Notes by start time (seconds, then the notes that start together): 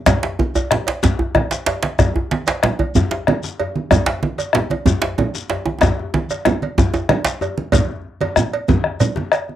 0.06 bombo rim, bombo low, cowbell, djembe slap, low conga, djembe bass, shekere
0.23 djembe slap, high conga, djembe tone
0.39 high conga, djembe bass
0.55 cowbell, djembe slap, djembe bass, shekere
0.71 bombo rim, djembe slap, djembe tone, low conga
0.87 cowbell, djembe slap
1.03 bombo low, djembe slap, djembe bass, shekere
1.19 djembe tone, djembe bass
1.35 bombo rim, cowbell, high conga, djembe bass, low conga
1.51 djembe slap, shekere
1.66 cowbell, djembe slap, djembe tone
1.83 djembe slap, high conga
1.99 bombo rim, bombo low, cowbell, djembe slap, djembe bass, low conga, shekere
2.16 high conga, djembe tone, djembe bass
2.31 djembe slap, high conga
2.47 cowbell, djembe slap, shekere
2.63 bombo rim, djembe slap, low conga
2.79 cowbell, high conga, djembe bass
2.95 bombo low, djembe slap, djembe bass, shekere
3.11 djembe slap, djembe tone
3.27 bombo rim, cowbell, djembe slap, high conga, low conga
3.43 djembe slap, shekere
3.60 cowbell, djembe tone
3.76 djembe slap, high conga
3.91 bombo rim, bombo low, cowbell, djembe slap, low conga, djembe bass, shekere
4.06 djembe slap, djembe tone, high conga
4.23 high conga, djembe tone
4.38 cowbell, djembe slap, shekere
4.53 bombo rim, djembe slap, djembe tone, low conga
4.70 cowbell, djembe slap, high conga, djembe tone
4.86 bombo low, djembe slap, djembe tone, djembe bass, shekere
5.02 djembe slap, djembe tone
5.18 cowbell, djembe slap, djembe tone, high conga, low conga
5.35 djembe slap, shekere
5.49 cowbell, djembe slap, djembe tone
5.66 djembe slap, djembe tone, high conga
5.81 bombo rim, bombo low, cowbell, djembe slap, djembe tone, low conga, djembe bass, shekere
5.99 djembe tone
6.14 bombo rim, djembe tone, high conga
6.30 cowbell, djembe slap, high conga, shekere
6.45 bombo rim, djembe slap, djembe tone, low conga, shekere
6.62 cowbell, high conga
6.78 bombo low, djembe slap, djembe tone, djembe bass, shekere
6.94 djembe slap, djembe tone, shekere
7.09 bombo rim, cowbell, djembe slap, high conga, low conga
7.25 bombo rim, djembe slap, shekere
7.26 djembe slap
7.41 cowbell, djembe tone, shekere
7.58 djembe slap, high conga
7.72 bombo low, cowbell, djembe slap, high conga, djembe bass, low conga, shekere
8.21 cowbell, djembe slap, high conga, djembe tone
8.36 bombo rim, low conga, shekere
8.53 cowbell
8.68 bombo low, djembe slap, high conga, djembe bass, shekere
8.84 bombo rim
9.00 bombo rim, cowbell, low conga, shekere
9.16 djembe slap, djembe tone, high conga
9.32 bombo rim, cowbell, djembe slap, shekere
9.49 djembe slap, high conga